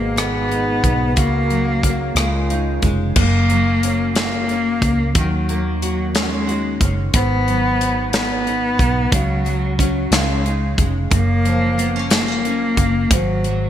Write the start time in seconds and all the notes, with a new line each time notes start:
Already playing: G#1 G#2 B2 D#3 G#3 A#3 G#4
0.16 D#3 B3, cross-stick, closed hi-hat
0.49 D#4, closed hi-hat
0.82 B1 B3, kick, closed hi-hat
1.15 C#2 C#3 A#3 F#4, kick, closed hi-hat
1.50 F#3, closed hi-hat
1.83 A#3, kick, closed hi-hat
2.15 C#2 C#3 D#3 G#3 C#4 F4, cross-stick, closed hi-hat
2.50 D#4, closed hi-hat
2.82 F1 G#3, kick, closed hi-hat
3.16 F#1 F#2 A#3, kick, crash
3.50 F#3, closed hi-hat
3.83 C#4, closed hi-hat
4.16 A#3, snare, closed hi-hat
4.49 C#4, closed hi-hat
4.81 C#2 A#3, kick, closed hi-hat
5.15 D#2 D#3 F#3, kick, closed hi-hat
5.49 A#3, closed hi-hat
5.82 F#3 F#4, closed hi-hat
6.15 G#3 C#4, snare, closed hi-hat
6.23 F#3
6.30 G#3
6.47 F#4, closed hi-hat
6.80 F#1 C#4, kick, closed hi-hat
7.14 G#1 G#2 B3, kick, closed hi-hat
7.48 F#3, closed hi-hat
7.81 D#4, closed hi-hat
8.13 B3, snare, closed hi-hat
8.47 D#4, closed hi-hat
8.78 B1 B3, kick, closed hi-hat
9.12 C#2 C#3 F#3, kick, closed hi-hat
9.45 F#3, closed hi-hat
9.79 F#3 C#4, kick, closed hi-hat
10.11 C#2 C#3 G#3, snare, closed hi-hat
10.44 D#4, closed hi-hat
10.77 F1 G#3, kick, closed hi-hat
11.11 F#1 F#2, kick, closed hi-hat
11.15 A#3
11.45 F3, closed hi-hat
11.78 B3, closed hi-hat
11.96 C#4
12.10 G#3 A#3, snare, closed hi-hat
12.28 A#3
12.45 C#4, closed hi-hat
12.77 F#1 A#3, kick, closed hi-hat
13.10 G#1 G#2, kick, closed hi-hat
13.14 F#3
13.44 F#3, closed hi-hat